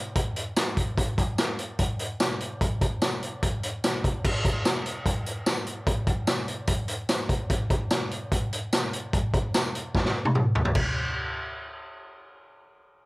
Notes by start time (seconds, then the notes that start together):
0.15 kick, closed hi-hat
0.36 closed hi-hat
0.56 snare, closed hi-hat, tambourine
0.77 kick, closed hi-hat
0.98 kick, closed hi-hat
1.18 kick, closed hi-hat
1.38 snare, closed hi-hat, tambourine
1.59 closed hi-hat
1.79 kick, closed hi-hat
1.99 closed hi-hat
2.20 snare, closed hi-hat, tambourine
2.40 closed hi-hat
2.61 kick, closed hi-hat
2.81 kick, closed hi-hat
3.02 snare, closed hi-hat, tambourine
3.23 closed hi-hat
3.43 kick, closed hi-hat
3.63 closed hi-hat
3.84 snare, closed hi-hat, tambourine
4.04 kick, closed hi-hat
4.25 kick, crash
4.45 kick, closed hi-hat
4.65 snare, closed hi-hat, tambourine
4.86 closed hi-hat
5.06 kick, closed hi-hat
5.26 closed hi-hat
5.46 snare, closed hi-hat, tambourine
5.67 closed hi-hat
5.87 kick, closed hi-hat
6.07 kick, closed hi-hat
6.27 snare, closed hi-hat, tambourine
6.48 closed hi-hat
6.67 kick, closed hi-hat
6.88 closed hi-hat
7.09 snare, closed hi-hat, tambourine
7.29 kick, closed hi-hat
7.50 kick, closed hi-hat
7.70 kick, closed hi-hat
7.91 snare, closed hi-hat, tambourine
8.11 closed hi-hat
8.32 kick, closed hi-hat
8.53 closed hi-hat
8.73 snare, closed hi-hat, tambourine
8.93 closed hi-hat
9.13 kick, closed hi-hat
9.34 kick, closed hi-hat
9.54 snare, closed hi-hat, tambourine
9.75 closed hi-hat
9.95 kick, snare
10.05 snare
10.25 high tom
10.35 mid tom
10.55 floor tom
10.65 floor tom
10.75 kick, crash